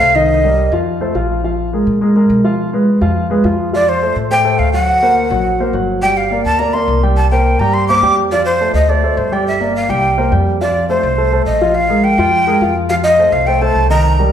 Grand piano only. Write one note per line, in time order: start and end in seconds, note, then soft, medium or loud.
0.00 0.10 A3 medium
0.00 0.10 A4 medium
0.00 0.11 C5 medium
0.15 0.39 D#3 medium
0.15 0.39 D#4 medium
0.15 0.39 D#5 medium
0.44 0.67 G3 medium
0.44 0.67 G4 medium
0.44 0.68 A#4 medium
0.72 0.96 F3 medium
0.72 0.96 F4 medium
0.72 0.96 F5 medium
1.01 1.13 A3 medium
1.01 1.13 A4 medium
1.01 1.13 C5 medium
1.15 1.39 F3 medium
1.15 1.39 F4 medium
1.15 1.39 F5 medium
1.44 1.68 F3 medium
1.44 1.68 F4 medium
1.44 1.68 F5 medium
1.73 1.96 G#3 medium
1.73 1.97 G#4 medium
1.73 1.97 A#4 medium
2.01 2.13 G#3 medium
2.01 2.13 G#4 medium
2.01 2.14 A#4 medium
2.16 2.39 G#3 medium
2.16 2.39 G#4 medium
2.16 2.39 A#4 medium
2.44 2.68 F3 medium
2.44 2.68 F4 medium
2.44 2.68 F5 medium
2.73 2.97 G#3 medium
2.73 2.97 G#4 medium
2.73 2.97 B4 medium
3.01 3.25 F3 medium
3.01 3.25 F4 medium
3.01 3.25 F5 medium
3.30 3.42 G#3 medium
3.30 3.42 G#4 medium
3.30 3.42 B4 medium
3.45 3.68 F3 medium
3.45 3.68 F4 medium
3.45 3.68 F5 medium
3.73 3.97 F3 medium
3.73 3.97 F4 medium
3.73 3.97 F5 medium
4.02 4.26 A3 medium
4.02 4.26 A4 medium
4.02 4.26 C5 medium
4.31 4.42 A3 medium
4.31 4.43 A4 medium
4.31 4.43 C5 medium
4.45 4.68 A3 medium
4.45 4.68 A4 medium
4.45 4.69 C5 medium
4.74 4.97 F#3 medium
4.74 4.97 F#4 medium
4.74 4.97 F#5 medium
5.02 5.26 A#3 medium
5.02 5.26 A#4 medium
5.02 5.26 C5 medium
5.31 5.54 F#3 medium
5.31 5.54 F#4 medium
5.31 5.55 F#5 medium
5.60 5.72 A#3 medium
5.60 5.72 A#4 medium
5.60 5.72 C5 medium
5.74 5.97 F#3 medium
5.74 5.97 F#4 medium
5.74 5.98 F#5 medium
6.02 6.26 G3 medium
6.02 6.26 G4 medium
6.02 6.26 G5 medium
6.31 6.54 A#3 medium
6.31 6.55 A#4 medium
6.31 6.55 D5 medium
6.59 6.71 A#3 medium
6.59 6.71 A#4 medium
6.59 6.72 D5 medium
6.74 6.98 A#3 medium
6.74 6.98 A#4 medium
6.74 6.98 D5 medium
7.03 7.26 G3 medium
7.03 7.26 G4 medium
7.03 7.27 G5 medium
7.31 7.55 A#3 medium
7.31 7.55 A#4 medium
7.31 7.55 C5 medium
7.60 7.84 G3 medium
7.60 7.84 G4 medium
7.60 7.84 G5 medium
7.89 8.01 A#3 medium
7.89 8.01 A#4 medium
7.89 8.01 C5 medium
8.03 8.26 G3 medium
8.03 8.27 G4 medium
8.03 8.27 G5 medium
8.32 8.55 F3 medium
8.32 8.56 F4 medium
8.32 8.56 F5 medium
8.61 8.84 A3 medium
8.61 8.84 A4 medium
8.61 8.84 C5 medium
8.89 9.01 A3 medium
8.89 9.01 A4 medium
8.89 9.01 C5 medium
9.03 9.27 A3 medium
9.03 9.27 A4 medium
9.03 9.27 C5 medium
9.32 9.55 G3 medium
9.32 9.56 G4 medium
9.32 9.56 G5 medium
9.60 9.84 A#3 medium
9.60 9.84 A#4 medium
9.60 9.84 D5 medium
9.89 10.13 G3 medium
9.89 10.13 G4 medium
9.89 10.13 G5 medium
10.18 10.29 A#3 medium
10.18 10.30 A#4 medium
10.18 10.30 C5 medium
10.32 10.55 G3 medium
10.32 10.56 G4 medium
10.32 10.56 G5 medium
10.61 10.84 F3 medium
10.61 10.85 F4 medium
10.61 10.85 F5 medium
10.89 11.13 A3 medium
10.89 11.13 A4 medium
10.89 11.13 C5 medium
11.18 11.30 A3 medium
11.18 11.30 A4 medium
11.18 11.30 C5 medium
11.32 11.56 A3 medium
11.32 11.56 A4 medium
11.32 11.56 C5 medium
11.61 11.85 F3 medium
11.61 11.85 F4 medium
11.61 11.85 F5 medium
11.89 12.13 G#3 medium
11.89 12.13 G#4 medium
11.89 12.13 A#4 medium
12.18 12.42 F3 medium
12.18 12.42 F4 medium
12.18 12.42 F5 medium
12.47 12.59 G#3 medium
12.47 12.59 G#4 medium
12.47 12.59 A#4 medium
12.62 12.85 F3 medium
12.62 12.85 F4 medium
12.62 12.85 F5 medium
12.90 13.13 F3 medium
12.90 13.14 F4 medium
12.90 13.14 F5 medium
13.19 13.42 A3 medium
13.19 13.43 A4 medium
13.19 13.43 C5 medium
13.47 13.59 A3 medium
13.47 13.59 A4 medium
13.47 13.59 C5 medium
13.61 13.85 A3 medium
13.61 13.85 A4 medium
13.61 13.85 C5 medium
13.90 14.14 D#3 medium
13.90 14.14 D#4 medium
13.90 14.14 D#5 medium
14.19 14.32 G3 medium
14.19 14.32 G4 medium
14.19 14.32 A#4 medium